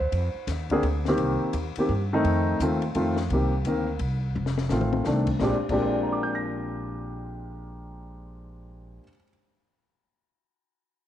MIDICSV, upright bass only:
0, 0, Header, 1, 3, 480
1, 0, Start_track
1, 0, Tempo, 351700
1, 184, Time_signature, 3, 2, 24, 8
1, 15115, End_track
2, 0, Start_track
2, 0, Title_t, "Upright bass"
2, 0, Program_c, 0, 32
2, 0, Note_on_c, 0, 38, 64
2, 157, Note_off_c, 0, 38, 0
2, 166, Note_on_c, 0, 41, 81
2, 458, Note_off_c, 0, 41, 0
2, 644, Note_on_c, 0, 39, 82
2, 1119, Note_off_c, 0, 39, 0
2, 1132, Note_on_c, 0, 38, 84
2, 1600, Note_off_c, 0, 38, 0
2, 1608, Note_on_c, 0, 36, 79
2, 1899, Note_off_c, 0, 36, 0
2, 2094, Note_on_c, 0, 39, 78
2, 2382, Note_off_c, 0, 39, 0
2, 2578, Note_on_c, 0, 43, 81
2, 3046, Note_off_c, 0, 43, 0
2, 3062, Note_on_c, 0, 41, 79
2, 3528, Note_off_c, 0, 41, 0
2, 3546, Note_on_c, 0, 39, 79
2, 4010, Note_off_c, 0, 39, 0
2, 4030, Note_on_c, 0, 41, 83
2, 4493, Note_off_c, 0, 41, 0
2, 4503, Note_on_c, 0, 36, 78
2, 4969, Note_off_c, 0, 36, 0
2, 4982, Note_on_c, 0, 38, 73
2, 5444, Note_off_c, 0, 38, 0
2, 5452, Note_on_c, 0, 36, 77
2, 5923, Note_off_c, 0, 36, 0
2, 5946, Note_on_c, 0, 29, 82
2, 6410, Note_off_c, 0, 29, 0
2, 6422, Note_on_c, 0, 33, 79
2, 6888, Note_off_c, 0, 33, 0
2, 6911, Note_on_c, 0, 36, 80
2, 7358, Note_off_c, 0, 36, 0
2, 7366, Note_on_c, 0, 34, 81
2, 7544, Note_off_c, 0, 34, 0
2, 7766, Note_on_c, 0, 34, 73
2, 12251, Note_off_c, 0, 34, 0
2, 15115, End_track
3, 0, Start_track
3, 0, Title_t, "Muted upright bass strokes"
3, 472, Note_on_c, 9, 29, 34
3, 609, Note_off_c, 9, 29, 0
3, 1948, Note_on_c, 9, 29, 36
3, 2084, Note_off_c, 9, 29, 0
3, 2415, Note_on_c, 9, 29, 36
3, 2551, Note_off_c, 9, 29, 0
3, 15115, End_track
0, 0, End_of_file